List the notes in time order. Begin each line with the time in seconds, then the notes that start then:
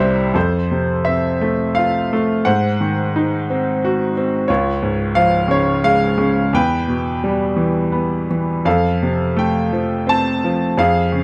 Already playing: C2 C3 E5
0.00 G3 C5
0.34 F2 A4 C5
0.71 C3
1.05 C4 E5
1.41 A3
1.75 F4 F5
2.13 A3
2.45 G#2 C5 F#5
2.81 D#3
3.16 D#4
3.50 C4
3.85 F#4
4.17 C4
4.48 C#2 F4 C#5
4.82 G#2
5.15 F3 F5
5.48 C#3 C#5
5.84 G#3 F5
6.18 C#3
6.53 E2 B4 G5
6.88 B2
7.24 G3
7.56 E3
7.92 B3
8.30 E3
8.65 F2 A4 F5
9.02 C3
9.37 A3 G5
9.73 F3
10.07 C4 A5
10.44 F3
10.78 F2 G#4 F5
11.12 C#3